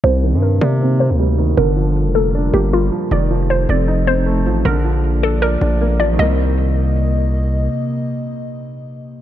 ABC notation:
X:1
M:4/4
L:1/16
Q:1/4=156
K:Cdor
V:1 name="Synth pluck"
c4 B2 d4 c6 | B6 A2 z2 G2 F4 | d4 c2 d4 c6 | B6 A2 B6 d2 |
e12 z4 | z16 |]
V:2 name="Analog synth pad"
[C,B,E]16 | [G,FB]16 | [F,EA]16 | [B,Fd]16 |
[C,B,e]16- | [C,B,e]16 |]
V:3 name="Felt piano" clef=bass
C,2 E,4 B,2 C2 B,2 G,2 E,2 | D,2 F,4 B,2 D2 B,2 G,2 F,2 | E,2 F,4 C2 E2 C2 A,2 F,2 | D,2 F,4 D2 d2 D2 B,2 F,2 |
[E,G,B,C]16- | [E,G,B,C]16 |]
V:4 name="808-style bass" clef=bass
C,,3 G,,3 C,4- C, D,,4- D,, | G,,,4- G,,, F,,,4- F,,, G,,,4 z2 | F,,,6 F,,,8 A,,,2 | B,,,8- B,,,2 B,,,4 A,,, B,,, |
C,,16 | z16 |]